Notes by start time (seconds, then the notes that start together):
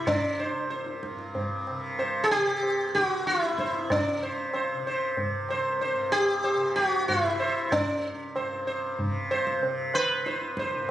Already playing: C2 G2 C3
0.07 C#4, tabla na, tabla ge
0.39 C5
0.48 C2
0.70 C5, tabla te
0.86 tabla te
1.03 tabla ke
1.10 G2
1.19 tabla te
1.35 tabla tin, tabla ge
1.67 C3, tabla na
1.99 C5, tabla tin
2.24 G#4
2.30 C3 G4
2.63 tabla na
2.91 C2 F#4
2.95 tabla ke
3.27 E4, tabla te
3.43 tabla te
3.52 G2
3.58 C5, tabla ke
3.74 tabla te
3.90 C#4, tabla na, tabla ge
4.13 C3
4.23 C5
4.54 C5, tabla na
4.74 C3
4.87 C5
5.17 tabla tin, tabla ge
5.34 C2
5.49 C5, tabla na
5.81 C5, tabla tin
5.94 G2
6.12 G4
6.44 C5, tabla na
6.55 C3
6.76 F#4, tabla ke
7.08 E4, tabla tin, tabla ge
7.16 C3
7.40 C5
7.72 C#4, tabla na, tabla ge
7.76 C2
8.36 G2 C5, tabla na
8.67 C5
8.98 C3, tabla tin, tabla ge
9.31 C5, tabla na
9.47 tabla ke
9.58 C3
9.63 tabla tin
9.94 B4 C5, tabla na
10.17 C2
10.26 C5, tabla te
10.42 tabla te
10.57 C5, tabla ke
10.73 tabla te
10.77 G2